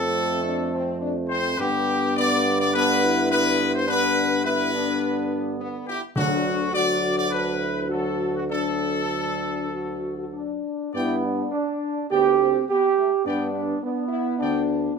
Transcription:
Already playing: F2 F3 A3 C4 A4
0.44 D4
0.73 C4
1.01 D4
1.29 C4 C5
1.59 G2 D3 B3 G4
2.17 D3 B3 D5
2.60 D5
2.73 D3 B3 D4 B4
3.03 E4
3.30 D3 B3 B4
3.74 C5
3.87 D3 B3 D4 B4
4.44 D3 B3 E4 B4
4.74 D4
5.60 B3
5.87 E4 G4
6.16 D2 D3 F#3 D4 F#4
6.73 D3 F#3 F#4 D5
7.18 D5
7.31 D4 B4
7.59 E4
7.89 D3 F#3 F#4 A4
8.35 F#4
8.50 D3 F#3 D4 A4
9.11 D4
9.71 F#4
10.18 F#4
10.33 D4
10.93 G2 B3 E4 D5 G5
11.24 D4
11.52 D4
12.09 D2 B3 G4 D5 G5
12.39 C4
12.68 B3 G4
12.97 A3
13.24 G2 B3 D4 D5 G5
13.53 B3
13.81 B3 D4
14.08 E4
14.39 D2 D4 D5 G5

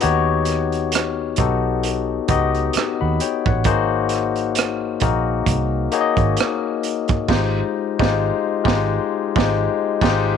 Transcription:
0.01 D#2 B3 D#4 F#4 G4 C#5, closed hi-hat
0.45 closed hi-hat
0.50 cross-stick
0.72 closed hi-hat
0.92 cross-stick, closed hi-hat
1.36 B1 B3 D#4 F#4 G4 A4, kick, closed hi-hat
1.83 closed hi-hat
2.28 C#2 B3 D#4 F#4 G4 D#5, kick, closed hi-hat
2.55 closed hi-hat
2.73 muted fingered electric bass stroke, cross-stick, closed hi-hat
3.01 D#2 F#5 B5
3.20 C#5 G5, closed hi-hat
3.46 A1 C#5 F#5, kick
3.64 G#1 A#3 D#4 F#4 G#4 C5, kick, closed hi-hat
4.09 closed hi-hat
4.14 cross-stick
4.36 closed hi-hat
4.55 cross-stick, closed hi-hat
5.00 A#1 A#3 D#4 F#4 G#4 A#4, kick, closed hi-hat
5.46 C2, kick, closed hi-hat
5.92 A#3 D#4 F#4 G#4 C#5, closed hi-hat
6.01 D#5
6.17 G#1, kick, closed hi-hat
6.37 cross-stick, closed hi-hat
6.83 closed hi-hat
7.08 kick, closed hi-hat
7.28 G#1 G#3 D#4 F4 G4 C5, kick, snare, crash
7.99 G#1 G#3 D#4 F4 G4 C5, kick, snare
8.64 G#1 G#3 D#4 F4 G4, kick, snare
9.35 G#1 G#3 D#4 F4 G4, kick, snare
9.44 C5
10.01 G#1 G#3 D#4 F4 G4, kick, snare, crash
10.10 C5

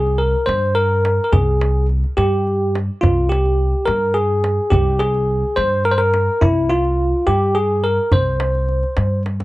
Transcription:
Already playing: C2 G#4
0.07 tombak ka
0.18 A#4
0.46 G2 C5, tombak tek
0.75 A#4
1.05 tombak tek
1.24 A#4
1.33 C2 G#4, tombak dum
1.61 tombak tek
1.89 tombak ka
2.04 tombak ka
2.17 G2 G4, tombak tek
2.47 tombak ka
2.75 tombak tek
3.01 C2 F4, tombak dum
3.29 G4, tombak tek
3.46 tombak ka
3.86 G2 A#4, tombak tek
4.14 G#4
4.44 tombak tek
4.70 C2 G4, tombak dum
4.99 G#4, tombak tek
5.14 tombak ka
5.56 G2 C5, tombak tek
5.85 A#4
5.91 C5
5.98 A#4
6.14 tombak tek
6.41 C2 E4, tombak dum
6.69 F4, tombak tek
6.85 tombak ka
7.27 G2 G4, tombak tek
7.55 G#4
7.84 A#4
8.12 C2 C5, tombak dum
8.40 tombak tek
8.55 tombak ka
8.69 tombak ka
8.83 tombak ka
8.97 G2, tombak tek
9.26 tombak tek
9.40 tombak ka

